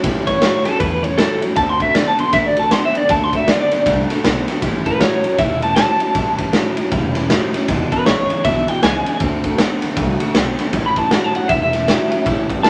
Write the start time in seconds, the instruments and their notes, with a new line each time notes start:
0.03 upright bass A1, steel-string acoustic guitar A2 E3 G3 C#4 E4, clean electric guitar A2 E3, kick, ride
0.27 clean electric guitar A2 E3 C#5, steel-string acoustic guitar G3 C#4 E4, kick, ride
0.41 steel-string acoustic guitar A2 E3 G3 C#4 E4, clean electric guitar A2 F#3, snare, ride
0.65 clean electric guitar A2 F#3 A4, steel-string acoustic guitar G3 C#4 E4, muted upright bass stroke, snare, ride
0.80 upright bass E2, clean electric guitar A2 E3 B4, steel-string acoustic guitar E3 G3 C#4 E4, kick, ride
1.03 clean electric guitar A2 E3 C#5, steel-string acoustic guitar G3 C#4 E4, ride
1.18 steel-string acoustic guitar A2 E3 G3 C#4 E4, clean electric guitar A2 F#3 A4, snare, ride
1.41 clean electric guitar A2 F#3, steel-string acoustic guitar G3 C#4 E4, muted upright bass stroke, ride
1.56 upright bass D2, steel-string acoustic guitar D3 A3 C4 F#4, clean electric guitar D3 A3 A5, kick, ride
1.69 clean electric guitar C6
1.80 clean electric guitar D3 A3 E5, steel-string acoustic guitar A3 C4 F#4, kick, ride
1.95 clean electric guitar D3 B3 D5, steel-string acoustic guitar D3 A3 C4 F#4, snare, ride
2.08 clean electric guitar A5
2.18 clean electric guitar D3 B3 C6, steel-string acoustic guitar A3 C4 F#4, muted upright bass stroke, ride
2.33 upright bass A1, steel-string acoustic guitar D3 A3 C4 F#4, clean electric guitar D3 A3 E5, kick, snare, ride
2.46 clean electric guitar D5
2.57 clean electric guitar D3 A3 A5, steel-string acoustic guitar A3 C4 F#4, ride
2.71 steel-string acoustic guitar D3 A3 C4 F#4, clean electric guitar D3 B3 C6, snare, ride
2.85 clean electric guitar E5
2.94 clean electric guitar D3 B3 D5, steel-string acoustic guitar A3 C4 F#4, muted upright bass stroke, ride
3.09 upright bass D2, steel-string acoustic guitar D3 A3 C4 F#4, clean electric guitar D3 A3 A5, kick, ride
3.24 clean electric guitar C6
3.33 clean electric guitar D3 A3 E5, steel-string acoustic guitar A3 C4 F#4, kick, ride
3.47 steel-string acoustic guitar D3 A3 C4 F#4, clean electric guitar D3 B3 D5, snare, ride
3.61 clean electric guitar D5
3.71 clean electric guitar D3 B3, steel-string acoustic guitar A3 C4 F#4, muted upright bass stroke, snare, ride
3.86 upright bass C2, steel-string acoustic guitar D3 A3 C4 F#4, clean electric guitar D3 A3, kick, snare, ride
4.09 clean electric guitar D3 A3, steel-string acoustic guitar A3 C4 F#4, muted upright bass stroke, snare, ride
4.23 upright bass B1, steel-string acoustic guitar D3 A3 C4 F#4, clean electric guitar D3 B3, snare, ride
4.48 clean electric guitar D3 B3, steel-string acoustic guitar A3 C4 F#4, muted upright bass stroke, snare, ride
4.62 upright bass A1, clean electric guitar A2 E3, steel-string acoustic guitar A2 E3 G3 C#4 E4, kick, ride
4.86 clean electric guitar A2 E3 B4, steel-string acoustic guitar G3 C#4 E4, kick, ride
5.00 steel-string acoustic guitar A2 E3 G3 C#4 E4, clean electric guitar A2 F#3 C#5, snare, ride
5.23 clean electric guitar A2 F#3, steel-string acoustic guitar G3 C#4 E4, muted upright bass stroke, ride
5.38 upright bass E1, clean electric guitar A2 E3 E5, steel-string acoustic guitar E3 G3 C#4 E4, kick, snare, ride
5.62 clean electric guitar A2 E3 A5, steel-string acoustic guitar G3 C#4 E4, ride
5.76 steel-string acoustic guitar A2 E3 G3 C#4 E4, clean electric guitar A2 F#3 A5, snare, ride
6.00 clean electric guitar A2 F#3, steel-string acoustic guitar C#4 E4, muted upright bass stroke, ride
6.04 steel-string acoustic guitar G3
6.15 upright bass A1, steel-string acoustic guitar A2 E3 G3 C#4 E4, clean electric guitar A2 E3, kick, ride
6.38 clean electric guitar A2 E3, steel-string acoustic guitar G3 C#4 E4, kick, ride
6.53 steel-string acoustic guitar A2 E3 G3 C#4 E4, clean electric guitar A2 F#3, snare, ride
6.77 clean electric guitar A2 F#3, steel-string acoustic guitar G3 C#4 E4, muted upright bass stroke, ride
6.91 upright bass E1, clean electric guitar A2 E3, steel-string acoustic guitar E3 G3 C#4 E4, kick, ride
7.15 clean electric guitar A2 E3, steel-string acoustic guitar G3 C#4 E4, snare, ride
7.29 steel-string acoustic guitar A2 E3 G3 C#4 E4, clean electric guitar A2 F#3, snare, ride
7.53 clean electric guitar A2 F#3, steel-string acoustic guitar G3 C#4 E4, muted upright bass stroke, snare, ride
7.68 upright bass E1, steel-string acoustic guitar E2 B2 E3 G#3 D4 E4, clean electric guitar E2 B2, kick, ride
7.91 clean electric guitar E2 B2 B4, steel-string acoustic guitar E3 G#3 D4 E4, kick, ride
8.06 upright bass A1, steel-string acoustic guitar E2 B2 E3 G#3 D4 E4, clean electric guitar E2 C#3 C#5, snare, ride
8.29 clean electric guitar E2 C#3, steel-string acoustic guitar E3 G#3 D4 E4, muted upright bass stroke, ride
8.44 upright bass B1, clean electric guitar E2 B2 E5, steel-string acoustic guitar E3 G#3 D4 E4, kick, snare, ride
8.68 clean electric guitar E2 B2 G5, steel-string acoustic guitar E3 G#3 D4 E4, muted upright bass stroke, ride
8.82 upright bass C#2, steel-string acoustic guitar E2 B2 E3 G#3 D4 E4, clean electric guitar E2 C#3 G#5, snare, ride
9.06 clean electric guitar E2 C#3, steel-string acoustic guitar E3 G#3 D4 E4, ride
9.20 upright bass D2, steel-string acoustic guitar D3 A3 C4 F#4, clean electric guitar D3 A3, kick, ride
9.44 clean electric guitar D3 A3, steel-string acoustic guitar A3 C4 F#4, kick, ride
9.58 steel-string acoustic guitar D3 A3 C4 F#4, clean electric guitar D3 B3, snare, ride
9.82 clean electric guitar D3 B3, steel-string acoustic guitar A3 C4 F#4, muted upright bass stroke, snare, ride
9.97 upright bass C2, steel-string acoustic guitar D3 A3 C4 F#4, clean electric guitar D3 A3, kick, ride
10.20 clean electric guitar D3 A3, steel-string acoustic guitar C4 F#4, ride
10.24 steel-string acoustic guitar A3
10.35 upright bass B1, steel-string acoustic guitar D3 A3 C4 F#4, clean electric guitar D3 B3, snare, ride
10.58 clean electric guitar D3 B3, steel-string acoustic guitar A3 C4 F#4, muted upright bass stroke, snare, ride
10.73 upright bass A1, steel-string acoustic guitar A2 E3 G3 C#4 E4, clean electric guitar A2 E3, kick, ride
10.86 clean electric guitar B5
10.96 clean electric guitar A2 E3 A5, steel-string acoustic guitar C#4 E4, kick, ride
11.00 steel-string acoustic guitar G3
11.11 steel-string acoustic guitar A2 E3 G3 C#4 E4, clean electric guitar A2 F#3 F#5, snare, ride
11.24 clean electric guitar A5
11.35 clean electric guitar A2 F#3 F#5, steel-string acoustic guitar G3 C#4 E4, muted upright bass stroke, ride
11.49 upright bass E1, clean electric guitar A2 E3 E5, steel-string acoustic guitar E3 G3 C#4 E4, kick, ride
11.62 clean electric guitar E5
11.73 clean electric guitar A2 E3, steel-string acoustic guitar G3 C#4 E4, snare, ride
11.88 steel-string acoustic guitar A2 E3 G3 C#4 E4, clean electric guitar A2 F#3, snare, ride
12.11 clean electric guitar A2 F#3, steel-string acoustic guitar G3 C#4 E4, muted upright bass stroke, ride
12.25 upright bass A1, steel-string acoustic guitar A2 E3 G3 C#4 E4, clean electric guitar A2 E3, kick, ride
12.49 clean electric guitar A2 E3, steel-string acoustic guitar G3 C#4 E4, kick, ride
12.63 steel-string acoustic guitar A2 E3 G3 C#4 E4, clean electric guitar A2 F#3 A5, snare, ride